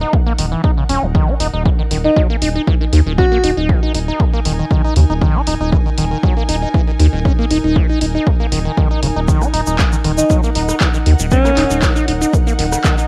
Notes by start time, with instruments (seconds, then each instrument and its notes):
Already playing: string section D#4 A#4 F#5
0.01 acid bass D#4
0.13 acid bass G#3, kick
0.26 acid bass A#3
0.39 analog synth bass D#1, acid bass D#3, open hi-hat
0.52 acid bass E3
0.64 acid bass D#4, kick
0.78 acid bass C#3
0.89 analog synth bass D#1, acid bass C#4, open hi-hat
1.03 analog synth bass D#1, acid bass D#3
1.15 acid bass D#3, kick
1.28 acid bass D#4
1.40 analog synth bass D#1, acid bass D#4, open hi-hat
1.54 analog synth bass D#1, acid bass D#4
1.66 acid bass E3, kick
1.79 acid bass D#3
1.91 analog synth bass D#1, acid bass D#3, open hi-hat
2.05 acid bass D#3, alto saxophone D#4
2.17 acid bass F#3, kick
2.30 acid bass A#3, string section G#5
2.42 analog synth bass D#1, acid bass D#4, open hi-hat
2.56 acid bass D#4
2.67 acid bass E3, kick
2.81 acid bass D#3
2.93 analog synth bass D#2, acid bass D#3, open hi-hat
3.06 analog synth bass D#1, acid bass D#3
3.18 acid bass C#4, alto saxophone F#4, kick
3.32 acid bass A#3
3.44 analog synth bass D#1, acid bass D#4, open hi-hat
3.57 analog synth bass D#1, acid bass D#4
3.69 acid bass D#3, kick
3.83 acid bass D#4
3.94 analog synth bass D#1, acid bass D#4, open hi-hat
4.08 acid bass D#4
4.20 acid bass G#3, kick
4.34 acid bass A#3
4.45 analog synth bass D#1, acid bass D#3, open hi-hat
4.59 acid bass D#3
4.71 acid bass D#3, kick
4.85 acid bass D#4
4.96 analog synth bass D#2, acid bass C#3, open hi-hat
5.10 analog synth bass D#1, acid bass D#4
5.22 acid bass D#3, kick
5.35 acid bass D#4
5.47 analog synth bass D#1, acid bass D#4, open hi-hat
5.60 analog synth bass D#1, acid bass D#4
5.72 acid bass E3, kick
5.86 acid bass D#3
5.98 analog synth bass D#1, acid bass D#3, open hi-hat
6.11 acid bass D#3
6.23 acid bass F#3, kick
6.37 acid bass A#3
6.49 analog synth bass D#1, acid bass D#4, open hi-hat
6.62 acid bass D#4
6.74 acid bass E3, kick
6.87 acid bass D#3
6.99 analog synth bass D#2, acid bass D#3, open hi-hat
7.13 analog synth bass D#1, acid bass D#3
7.25 acid bass C#4, kick
7.39 acid bass A#3
7.50 analog synth bass D#1, acid bass D#4, open hi-hat
7.64 analog synth bass D#1, acid bass D#4
7.76 acid bass D#3, kick
7.89 acid bass D#4
8.01 analog synth bass D#1, acid bass D#4, open hi-hat
8.15 acid bass D#4
8.27 acid bass G#3, kick
8.40 acid bass A#3
8.52 analog synth bass D#1, acid bass D#3, open hi-hat
8.65 acid bass D#3
8.78 acid bass D#3, kick
8.91 acid bass D#4
9.03 analog synth bass D#1, acid bass C#3, open hi-hat
9.16 analog synth bass D#1, acid bass D#4
9.28 acid bass D#3, kick, shaker
9.42 acid bass D#4, cross-stick, shaker
9.54 analog synth bass D#1, acid bass D#4, open hi-hat
9.67 analog synth bass D#1, acid bass D#4, shaker
9.79 acid bass E3, kick, clap, shaker
9.93 acid bass D#3, shaker
10.05 analog synth bass D#1, acid bass D#3, cross-stick, open hi-hat
10.18 acid bass D#3, alto saxophone D#4, shaker
10.30 acid bass F#3, kick, shaker
10.43 acid bass A#3, string section F#5, shaker
10.55 analog synth bass D#1, acid bass D#4, open hi-hat
10.69 acid bass D#4, cross-stick, shaker
10.81 acid bass E3, kick, clap, shaker
10.94 acid bass D#3, shaker
11.06 analog synth bass D#2, acid bass D#3, open hi-hat
11.20 analog synth bass D#1, acid bass D#3, shaker
11.31 alto saxophone C#4, acid bass C#4, kick, shaker
11.45 acid bass A#3, cross-stick, shaker
11.57 analog synth bass D#1, acid bass D#4, clap, open hi-hat
11.71 analog synth bass D#1, acid bass D#4, shaker
11.82 acid bass D#3, kick, clap, shaker
11.96 acid bass D#4, shaker
12.08 analog synth bass D#1, acid bass D#4, open hi-hat
12.21 acid bass D#4, shaker
12.33 acid bass G#3, kick, shaker
12.47 acid bass A#3, shaker
12.59 analog synth bass D#1, acid bass D#3, open hi-hat
12.72 acid bass D#3, cross-stick, shaker
12.84 acid bass D#3, kick, clap, shaker
12.98 acid bass D#4, shaker